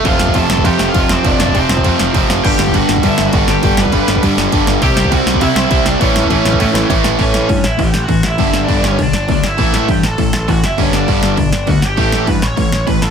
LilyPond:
<<
  \new Staff \with { instrumentName = "Overdriven electric guitar" } { \time 4/4 \key g \lydian \tempo 4 = 201 <f' f''>4 <a' a''>4 <g' g''>8. <f' f''>8. <c' c''>8 | <d' d''>8 <d' d''>8 <c' c''>2~ <c' c''>8 r8 | <g' g''>4 <fis' fis''>4 <e' e''>8. <fis' fis''>8. <g' g''>8~ | <g' g''>8 <b' b''>4. r2 |
<g' g''>4 <fis' fis''>4 <e' e''>8 <e' e''>4 <d' d''>8 | <cis' cis''>2. r4 | <cis' cis''>4. <e' e''>8 <g' g''>8. <fis' fis''>8. <e' e''>8~ | <e' e''>8. <d' d''>8. <cis' cis''>8 <d' d''>4 <d' d''>8 <e' e''>8~ |
<e' e''>8 <e' e''>8 <g' g''>8 <a' a''>4. <fis' fis''>8 <e' e''>8 | <cis' cis''>8 <d' d''>2~ <d' d''>8 <fis' fis''>8 <g' g''>8~ | <g' g''>8 <g' g''>8 <b' b''>8 <cis'' cis'''>4. <b' b''>8 <a' a''>8 | }
  \new Staff \with { instrumentName = "Distorted electric guitar" } { \clef bass \time 4/4 \key g \lydian <f, c f>4 <f, c f>4 <f, c f>4 <f, c f>4 | <f, c f>4 <f, c f>4 <f, c f>4 <f, c f>4 | <g, d g>4 <g, d g>4 <g, d g>4 <g, d g>4 | <g, d g>4 <g, d g>4 <g, d g>4 <g, d g>4 |
<c g c'>4 <c g c'>4 <c g c'>4 <c g c'>4 | <a, e a>4 <a, e a>4 <a, e a>4 <a, e a>4 | <a, e a>4 <a, e>8 r8 <a, e>8 r8 <a, e>8 r8 | <g, d g>4 <g, d g>4 <g, d>8 r8 <g, d>8 r8 |
<a, e a>4 <a, e>8 r8 <a, e>8 r8 <a, e>8 r8 | <g, d g>4 <g, d g>4 <g, d>8 r8 <g, d>8 r8 | <a, e a>4 <a, e>8 r8 <a, e>8 r8 <a, e>8 r8 | }
  \new Staff \with { instrumentName = "Overdriven electric guitar" } { \clef bass \time 4/4 \key g \lydian <f, c f>4 <f, c f>4 <f, c f>4 <f, c f>4 | <f, c f>4 <f, c f>4 <f, c f>4 <f, c f>4 | <g, d g>4 <g, d g>4 <g, d g>4 <g, d g>4 | <g, d g>4 <g, d g>4 <g, d g>4 <g, d g>4 |
<c g c'>4 <c g c'>4 <c g c'>4 <c g c'>4 | <a, e a>4 <a, e a>4 <a, e a>4 <a, e a>4 | <a, e a>4 <a, e>8 r8 <a, e>8 r8 <a, e>8 r8 | <g, d g>4 <g, d g>4 <g, d>8 r8 <g, d>8 r8 |
<a, e a>4 <a, e>8 r8 <a, e>8 r8 <a, e>8 r8 | <g, d g>4 <g, d g>4 <g, d>8 r8 <g, d>8 r8 | <a, e a>4 <a, e>8 r8 <a, e>8 r8 <a, e>8 r8 | }
  \new Staff \with { instrumentName = "Picked electric bass" } { \clef bass \time 4/4 \key g \lydian f,,8 f,,8 f,,8 f,,8 f,8 f,,8 f,,8 f,,8 | f,,8 f,,8 f,,8 f,,8 f,8 f,,8 f,,8 fis,,8 | g,,8 g,,8 g,,8 g,,8 g,8 g,,8 g,,8 g,,8 | g,,8 g,,8 g,,8 g,,8 g,8 g,,8 g,,8 g,,8 |
c,8 c,8 c,8 c,8 c8 c,8 c,8 c,8 | a,,8 a,,8 a,,8 a,,8 a,8 a,,8 a,,8 a,,8 | a,,8 a,,8 g,8 a,,8 a,,8 a,,8 a,,8 a,,8 | g,,8 g,,8 g,,8 g,,8 b,,8 g,,8 d,8 g,,8 |
a,,8 a,,8 g,8 a,,8 a,,8 a,,8 a,,8 fis,,8 | g,,8 g,,8 g,,8 g,,8 b,,8 g,,8 d,8 g,,8 | a,,8 a,,8 g,8 a,,8 a,,8 a,,8 a,,8 a,,8 | }
  \new DrumStaff \with { instrumentName = "Drums" } \drummode { \time 4/4 <bd cymr>8 sn16 bd16 <bd cymr>8 sn16 bd16 <bd cymr>8 sn8 <bd cymr>8 sn8 | <bd cymr>8 sn16 bd16 <bd cymr>8 sn16 bd16 <bd cymr>8 sn8 <bd cymr>8 sn8 | <cymc bd>8 sn16 bd16 <bd cymr>8 sn16 bd16 <bd cymr>8 sn8 <bd cymr>8 sn8 | <bd cymr>8 sn16 bd16 <bd cymr>8 sn16 bd16 <bd cymr>8 sn8 <bd cymr>8 sn8 |
<bd cymr>8 sn16 bd16 <bd cymr>8 sn16 bd16 <bd cymr>8 sn8 <bd cymr>8 sn8 | <bd cymr>8 sn16 bd16 <bd cymr>8 sn16 bd16 <bd cymr>8 sn8 <bd cymr>8 sn8 | <cymc bd>8 sn8 <cymc bd>8 sn8 <cymc bd>8 sn8 <cymc bd>8 sn8 | <cymc bd>8 sn8 <cymc bd>8 sn8 <cymc bd>8 sn8 <cymc bd>8 sn8 |
<cymc bd>8 sn8 <cymc bd>8 sn8 <cymc bd>8 sn8 <cymc bd>8 sn8 | <cymc bd>8 sn8 <cymc bd>8 sn8 <cymc bd>8 sn8 <cymc bd>8 sn8 | <cymc bd>8 sn8 <cymc bd>8 sn8 <cymc bd>8 sn8 <cymc bd>8 sn8 | }
>>